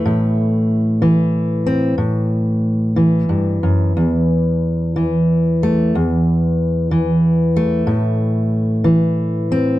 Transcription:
\new Staff \with { instrumentName = "Steel-string acoustic guitar" } { \clef bass \time 3/4 \key a \dorian \tempo 4 = 92 << { a2~ a8 c'8 | r2. | r2 r8 a8 | r2 r8 a8~ |
a2~ a8 c'8 | } \\ { <a, e>4. e4. | a,4. e8 g,8 fis,8 | e,4. e4. | e,4. e4. |
a,4. e4. | } >> }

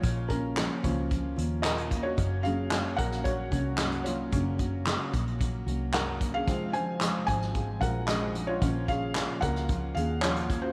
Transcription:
<<
  \new Staff \with { instrumentName = "Felt piano" } { \time 4/4 \key bes \minor \tempo 4 = 112 <f' des''>8 <des' bes'>2 r8 <bes' ees''>8. <ges' des''>16~ | <ges' des''>8 <aes' f''>4 <bes' ges''>8 <ges' des''>4. <f' des''>8~ | <f' des''>4 r2 <bes' ges''>8. <aes' f''>16~ | <aes' f''>8 <c'' aes''>4 <c'' aes''>4 <bes' ges''>8 <aes' ees''>8. <f' des''>16~ |
<f' des''>8 <aes' f''>4 <bes' ges''>4 <aes' f''>8 <f' des''>8. <ges' c''>16 | }
  \new Staff \with { instrumentName = "Felt piano" } { \time 4/4 \key bes \minor r4. <f bes des'>2~ <f bes des'>8 | r8 <ges bes des'>4. r8 <ges bes des'>8 r4 | <ges bes des'>4. r2 r8 | <f aes c'>2 <f aes c'>8 r4. |
<f bes des'>8 r2. r8 | }
  \new Staff \with { instrumentName = "Steel-string acoustic guitar" } { \time 4/4 \key bes \minor <bes, f bes des' f'>8 <bes des' f'>8 <bes, f bes des' f'>8 <bes des' f'>8 <f bes des' f'>8 <bes des' f'>8 <bes, f bes des' f'>8 <bes des' f'>8 | <ges, des ges bes des' ges'>8 <ges bes des' ges'>8 <ges, des ges bes des' ges'>8 <ges bes des' ges'>8 <ges bes des' ges'>8 <ges bes des' ges'>8 <ges, des ges bes des' ges'>8 <ges bes des' ges'>8 | <ges, des ges bes des' ges'>8 <ges bes des' ges'>8 <ges, des ges bes des' ges'>8 <ges bes des' ges'>8 <ges bes des' ges'>8 <ges bes des' ges'>8 <ges, des ges bes des' ges'>8 <ges bes des' ges'>8 | <f, c f aes c' f'>8 <f aes c' f'>8 <f, c f aes c' f'>8 <f aes c' f'>8 <f aes c' f'>8 <f aes c' f'>8 <f, c f aes c' f'>8 <f aes c' f'>8 |
<bes, f bes des' f'>8 <bes des' f'>8 <bes, f bes des' f'>8 <bes des' f'>8 <f bes des' f'>8 <bes des' f'>8 <bes, f bes des' f'>8 <bes des' f'>8 | }
  \new Staff \with { instrumentName = "Picked electric bass" } { \clef bass \time 4/4 \key bes \minor bes,,4~ bes,,16 r16 des,4 ees,4. | ges,,4~ ges,,16 r16 bes,,4 c,4. | ges,,4~ ges,,16 r16 bes,,4 c,4. | f,,4~ f,,16 r16 aes,,4 bes,,4. |
bes,,4~ bes,,16 r16 des,4 ees,4. | }
  \new DrumStaff \with { instrumentName = "Drums" } \drummode { \time 4/4 <hh bd>8 <hh bd>8 <hc hh sn>8 <hh bd>8 <hh bd>8 hh8 <hc hh sn>16 hh16 <hh bd>8 | <hh bd>8 hh8 <hc hh sn>8 <hh bd>16 <hh sn>16 <hh bd>8 <hh bd>8 <hc hh sn>16 hh16 hh8 | <hh bd>8 <hh bd>8 <hc hh sn>8 <hh bd>16 hh16 <hh bd>8 hh8 <hc hh sn>8 <hh bd>8 | <hh bd>8 hh8 <hc hh sn>8 <hh bd>16 sn16 <hh bd>8 <hh bd>8 <hc hh sn>8 hh8 |
<hh bd>8 <hh bd>8 <hc hh sn>8 <hh bd>16 <hh sn>16 <hh bd>8 hh8 <hc hh sn>16 hh16 <hh bd>8 | }
>>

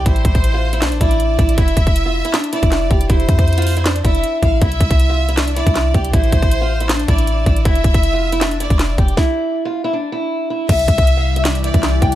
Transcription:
<<
  \new Staff \with { instrumentName = "Violin section" } { \time 4/4 \key c \major \tempo 4 = 158 c''2~ c''8 d''4. | e''2~ e''8 d''4. | c''2~ c''8 e''4 f''8 | e''2~ e''8 d''4. |
c''2~ c''8 d''4. | e''2~ e''8 d''4. | r1 | e''2~ e''8 d''4. | }
  \new Staff \with { instrumentName = "Steel-string acoustic guitar" } { \time 4/4 \key c \major e'4~ e'16 f'8 e'16 d'8 e'4 e'8 | e'4~ e'16 f'8 e'16 d'8 e'4 g'8 | e'4~ e'16 f'8 e'16 d'8 e'4 e'8 | e'4~ e'16 f'8 e'16 d'8 e'4 g'8 |
e'4~ e'16 f'8 e'16 d'8 e'4 e'8 | e'4~ e'16 f'8 e'16 d'8 e'4 g'8 | e'4~ e'16 f'8 e'16 d'8 e'4 e'8 | e''4~ e''16 f''8 e''16 d''8 e''4 g''8 | }
  \new Staff \with { instrumentName = "Ambient pad" } { \clef bass \time 4/4 \key c \major r1 | r1 | r1 | r1 |
r1 | r1 | r1 | <c e g e'>1 | }
  \new Staff \with { instrumentName = "808-style bass" } { \clef bass \time 4/4 \key c \major a,,8 a,,16 a,,4~ a,,16 b,,16 a,,16 a,,4 a,,8 | f,,8 f,,4~ f,,16 r4 f,,8. f,,8 | f,,8 f,2 f,,8 r8 a,,8 | c,8 c,2~ c,16 c,8. c,8 |
a,,8 a,,2 a,,4 a,,8 | f,,8 f,,16 f,,2 f,,8. f,,8 | r1 | c,8 c,2~ c,16 c,8. c,8 | }
  \new DrumStaff \with { instrumentName = "Drums" } \drummode { \time 4/4 <hh bd>16 hh16 <hh bd>16 <hh bd>16 hh8. hh16 <hc hh sn>16 hh16 <hh bd>16 hh16 hh8 <hh bd>16 hh16 | <hh bd>16 hh16 <hh bd>16 <hh bd>16 hh8. hh16 <hc hh sn>16 hh16 hh16 <hh bd>16 <hc hh sn>8 <hh bd>16 hh16 | <hh bd>16 hh16 <hh bd>16 <hh bd>16 hh32 hh32 hh32 hh32 hho16 hh16 <hc hh sn>16 hh16 <hh bd>16 hh16 hh8 <hh bd>8 | <hh bd>16 hh16 <hh bd>16 <hh bd>16 hh8. hh16 <hc hh sn>16 hh16 hh16 <hh bd>16 <hc hh sn>8 <hh bd>16 hh16 |
<hh bd>16 hh16 <hh bd>16 <hh bd>16 hh8. hh16 <hc hh sn>16 hh16 <hh bd>16 hh16 hh8 <hh bd>16 hh16 | <hh bd>16 hh16 <hh bd>16 <hh bd>16 hh8. hh16 <hc hh sn>16 hh16 hh16 <hh bd>16 <hc hh sn>8 <hh bd>16 hh16 | <bd sn>4 r4 r4 r4 | <cymc hh bd>16 hh16 <hh bd>16 <hh bd>16 hh8. hh16 <hc hh sn>16 hh16 hh16 <hh bd>16 <hc hh sn>8 <hh bd>8 | }
>>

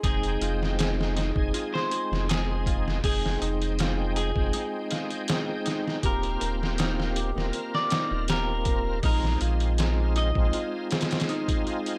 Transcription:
<<
  \new Staff \with { instrumentName = "Clean electric guitar" } { \time 4/4 \key f \minor \tempo 4 = 80 aes'8. r4. c''8. aes'4 | aes'8 r4 aes'8. r4. r16 | bes'8. r4. d''8. bes'4 | bes'8 r4 ees''8. r4. r16 | }
  \new Staff \with { instrumentName = "Harp" } { \time 4/4 \key f \minor ees'16 r16 f'16 r16 aes'8 ees'16 r16 f'16 r16 aes'8 ees'16 r16 f'16 r16 | aes'8 ees'16 r16 f'16 r16 aes'8 ees'16 r16 f'16 r16 aes'8 ees'16 r16 | g'16 r16 bes'8 ees'16 r16 g'16 r16 bes'8 ees'16 r16 g'16 r16 bes'8 | ees'16 r16 f'16 r16 aes'8 ees'16 r16 f'16 r16 aes'8 ees'16 r16 f'16 r16 | }
  \new Staff \with { instrumentName = "Tonewheel organ" } { \time 4/4 \key f \minor <aes c' ees' g''>4.~ <aes c' ees' g''>16 <aes c' ees' aes'>2~ <aes c' ees' aes'>16 | <aes c' ees' g''>4.~ <aes c' ees' g''>16 <aes c' ees' g''>2~ <aes c' ees' g''>16 | <bes c' f' g'>4.~ <bes c' f' g'>16 <bes c' f' bes'>2~ <bes c' f' bes'>16 | <aes c' ees' f'>4.~ <aes c' ees' f'>16 <aes c' ees' f'>2~ <aes c' ees' f'>16 | }
  \new Staff \with { instrumentName = "Sub bass" } { \clef bass \time 4/4 \key f \minor f,,8 f,,4~ f,,16 f,,16 r8. f,,4~ f,,16 | f,,8 f,,4~ f,,16 f,,16 r2 | ees,,8 ees,,4~ ees,,16 ees,,16 r8. ees,,4~ ees,,16 | bes,,8 bes,,4~ bes,,16 bes,,16 r2 | }
  \new DrumStaff \with { instrumentName = "Drums" } \drummode { \time 4/4 <hh bd>16 hh16 hh16 sn16 <hh sn>16 sn16 <hh sn>16 bd16 hh16 sn16 hh16 sn16 <hh sn>8 <hh bd>16 sn16 | <hho bd>16 sn16 hh16 hh16 <hh sn>8 hh16 bd16 hh8 <hh sn>16 hh16 <hh sn>8 <hh sn>16 sn16 | <hh bd>16 hh16 hh16 sn16 <hh sn>16 sn16 hh16 sn16 hh16 sn16 <hh sn>8 <hh sn>8 <hh bd>8 | <hho bd>16 sn16 hh16 hh16 <hh sn>8 hh16 bd16 hh8 <hh sn>32 <hh sn>32 <hh sn>32 <hh sn>32 hh16 <hh bd>16 hh16 hh16 | }
>>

